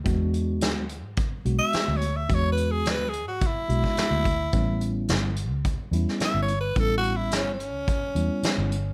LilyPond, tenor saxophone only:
\new Staff \with { instrumentName = "Tenor saxophone" } { \time 4/4 \key a \major \tempo 4 = 108 r2 \tuplet 3/2 { r4 e''8~ e''8 cis''8 e''8 } | \tuplet 3/2 { cis''8 b'8 gis'8 b'8 gis'8 fis'8 } e'2~ | e'4 r2 \tuplet 3/2 { e''8 cis''8 b'8 } | \tuplet 3/2 { a'8 fis'8 e'8 cis'8 cis'4~ } cis'2 | }